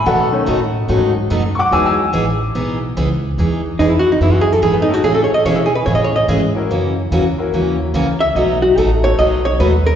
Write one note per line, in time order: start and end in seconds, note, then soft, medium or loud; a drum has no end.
0.06 0.28 B2 medium
0.06 0.46 B2 loud
0.06 0.28 F#3 medium
0.06 0.28 A3 medium
0.06 0.28 D#4 medium
0.06 0.28 F#4 medium
0.06 1.26 A4 medium
0.06 1.27 F#5 loud
0.32 0.56 D#3 medium
0.32 0.57 A3 medium
0.32 0.57 C#4 medium
0.46 0.88 A2 medium
0.46 0.59 B2 medium
0.46 0.59 F#3 medium
0.46 0.59 A3 medium
0.46 0.59 D#4 medium
0.46 0.59 F#4 medium
0.88 1.29 G#2 medium
0.88 1.11 B2 medium
0.88 1.13 D#3 soft
0.88 1.11 F#3 medium
0.88 1.11 A3 medium
0.88 1.13 A3 soft
0.88 1.13 C#4 medium
0.88 1.11 D#4 medium
0.88 1.11 F#4 medium
1.30 1.71 F#2 medium
1.30 1.42 B2 medium
1.30 1.42 F#3 medium
1.30 1.42 A3 medium
1.30 1.42 D#4 medium
1.30 1.42 F#4 medium
1.55 1.71 F#5 loud
1.55 1.59 C#6 medium
1.59 1.72 D6 loud
1.71 2.12 E2 medium
1.71 1.94 E3 medium
1.71 2.02 F#3 medium
1.71 2.03 G#3 medium
1.71 1.94 B3 medium
1.71 2.03 D#4 medium
1.71 1.94 D#4 medium
1.71 1.95 G#4 medium
1.71 1.84 G#5 loud
1.71 1.85 E6 loud
1.86 3.06 G#5 medium
1.86 3.06 E6 loud
2.13 2.54 A1 medium
2.13 2.25 E3 medium
2.13 2.25 B3 medium
2.13 2.25 D#4 loud
2.13 2.25 G#4 medium
2.55 2.95 B1 medium
2.55 2.77 E3 medium
2.55 2.77 B3 medium
2.55 2.77 D#4 medium
2.55 2.77 G#4 medium
2.97 3.37 C#2 medium
2.97 3.08 E3 medium
2.97 3.08 B3 medium
2.97 3.08 D#4 medium
2.97 3.09 G#4 medium
3.38 3.78 E2 medium
3.38 3.60 E3 medium
3.38 3.60 B3 medium
3.38 3.60 D#4 medium
3.38 3.61 G#4 medium
3.79 4.19 F2 medium
3.79 3.91 E3 medium
3.79 3.91 B3 medium
3.79 3.90 D#4 medium
3.79 3.91 D#4 medium
3.79 3.92 G#4 medium
3.90 4.04 E4 medium
3.99 4.10 F#4 loud
4.12 4.20 D#4 medium
4.21 4.61 F#2 medium
4.21 4.43 E3 medium
4.21 4.43 B3 medium
4.21 4.43 D#4 medium
4.21 4.33 E4 medium
4.21 4.43 G#4 medium
4.33 4.46 F#4 medium
4.41 4.52 G#4 medium
4.52 4.61 A4 medium
4.62 5.03 G#2 medium
4.62 4.74 E3 medium
4.62 4.74 B3 medium
4.62 4.74 D#4 medium
4.62 4.74 G#4 medium
4.62 4.75 G#4 medium
4.74 4.88 B3 medium
4.82 4.94 D#4 loud
4.88 5.02 A3 medium
4.88 5.02 C#4 medium
4.88 5.02 E4 medium
4.88 5.02 G#4 medium
4.88 5.02 A4 medium
4.94 5.02 F#4 medium
5.04 5.29 A2 medium
5.04 5.26 C#3 medium
5.04 5.26 E3 medium
5.04 5.26 A3 medium
5.04 5.26 C#4 medium
5.04 5.14 G#4 medium
5.04 5.26 G#4 medium
5.15 5.24 A4 medium
5.24 5.34 C#5 medium
5.31 5.43 D#5 medium
5.31 muted upright bass stroke soft
5.45 5.85 B2 medium
5.45 5.57 C#3 medium
5.45 5.57 E3 medium
5.45 5.57 A3 medium
5.45 5.57 C#4 medium
5.45 5.57 G#4 medium
5.45 5.58 C#5 medium
5.56 5.70 E4 medium
5.66 5.75 G#4 medium
5.75 5.84 B4 medium
5.86 6.27 A2 medium
5.86 6.09 C#3 soft
5.86 6.09 E3 medium
5.86 6.09 A3 medium
5.86 6.09 C#4 medium
5.86 6.09 G#4 medium
5.86 5.95 C#5 medium
5.95 6.10 D#5 medium
6.04 6.16 C#5 loud
6.16 7.18 D#5 medium
6.28 6.68 G#2 medium
6.28 6.40 C#3 medium
6.28 6.40 E3 medium
6.28 6.40 A3 medium
6.28 6.40 C#4 medium
6.28 6.40 G#4 loud
6.55 6.68 A#3 medium
6.55 6.68 C#4 medium
6.55 6.68 E4 medium
6.55 6.69 F#4 medium
6.55 6.69 A#4 medium
6.69 7.10 F#2 medium
6.69 6.92 C#3 medium
6.69 6.92 E3 medium
6.69 6.92 A#3 medium
6.69 6.93 C#4 medium
6.69 6.93 F#4 medium
7.11 7.52 E2 medium
7.11 7.23 C#3 medium
7.11 7.23 E3 medium
7.11 7.23 A#3 medium
7.11 7.24 C#4 medium
7.11 7.24 F#4 medium
7.38 7.91 A#3 medium
7.38 7.91 C#4 medium
7.38 7.91 E4 medium
7.38 7.92 F#4 medium
7.38 7.92 A#4 medium
7.52 7.93 D#2 medium
7.52 7.75 C#3 medium
7.52 7.75 E3 medium
7.52 7.75 A#3 medium
7.52 7.76 C#4 medium
7.52 7.76 F#4 medium
7.94 8.34 C#2 medium
7.94 8.06 C#3 medium
7.94 8.06 E3 medium
7.94 8.06 A#3 medium
7.94 8.06 C#4 medium
7.94 8.06 F#4 loud
8.20 8.36 E5 loud
8.35 8.76 B1 medium
8.35 8.58 B2 medium
8.35 8.58 F#3 medium
8.35 8.58 A3 medium
8.35 8.58 D#4 medium
8.35 8.58 F#4 medium
8.35 8.62 D#5 loud
8.62 8.78 F#4 medium
8.77 9.17 A1 medium
8.77 8.89 B2 medium
8.77 8.89 F#3 medium
8.77 8.89 A3 medium
8.77 8.89 D#4 medium
8.77 8.89 F#4 medium
8.77 9.04 A4 medium
9.04 9.17 A3 medium
9.04 9.17 B3 medium
9.04 9.17 D#4 medium
9.04 9.17 F#4 medium
9.04 9.18 A4 medium
9.04 9.18 C#5 loud
9.19 9.59 B1 medium
9.19 9.41 B2 medium
9.19 9.41 F#3 medium
9.19 9.41 A3 medium
9.19 9.41 D#4 medium
9.19 9.41 F#4 medium
9.19 9.45 D#5 loud
9.45 9.59 C#5 loud
9.60 9.96 D#2 medium
9.60 9.72 B2 medium
9.60 9.72 F#3 medium
9.60 9.72 A3 medium
9.60 9.72 D#4 medium
9.60 9.72 F#4 medium
9.60 9.86 B4 medium
9.87 9.96 A#4 loud